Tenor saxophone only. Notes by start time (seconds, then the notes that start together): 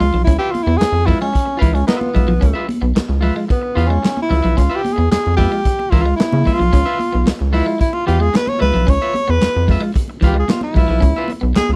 0.00 F4
0.24 E4
0.39 G4
0.51 F4
0.63 E4
0.77 G#4
1.06 E4
1.21 C#4
1.61 E4
1.74 C#4
1.87 B3
3.51 B3
3.86 C#4
4.22 E4
4.57 F4
4.76 G4
4.93 G#4
5.11 G#4
5.37 G4
5.90 F4
6.16 E4
6.53 F4
7.53 E4
7.80 E4
7.93 F4
8.07 G4
8.22 G#4
8.36 B4
8.48 C#5
8.61 B4
8.90 C#5
9.30 B4
10.26 G4
10.39 G#4
10.50 F4
10.64 E4
11.56 G#4